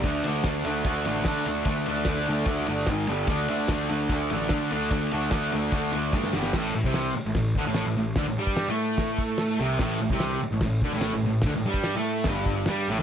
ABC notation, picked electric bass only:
X:1
M:4/4
L:1/16
Q:1/4=147
K:Glyd
V:1 name="Picked electric bass" clef=bass
D,,2 D,,2 D,,2 D,,2 D,,2 A,,,2 D,2 D,,2 | D,,2 D,,2 D,,2 D,,2 D,,2 G,,,2 ^G,,,2 =G,,,2 | D,,2 D,,2 D,,2 D,,2 D,,2 A,,,2 D,2 D,,2 | D,,2 D,,2 D,,2 D,,2 D,,2 D,,2 G,,2 G,,,2 |
A,,,2 A,,, =C,,3 z A,,, A,,,2 D,, A,,,2 A,,, A,,,2 | D,, A,,, G,,3 A,,8- A,, =C,,2 | A,,,2 A,,, =C,,3 z A,,, A,,,2 D,, A,,,2 A,,, A,,,2 | D,, A,,, G,,3 A,,3 G,,,4 G,,2 A,,, ^D,, |]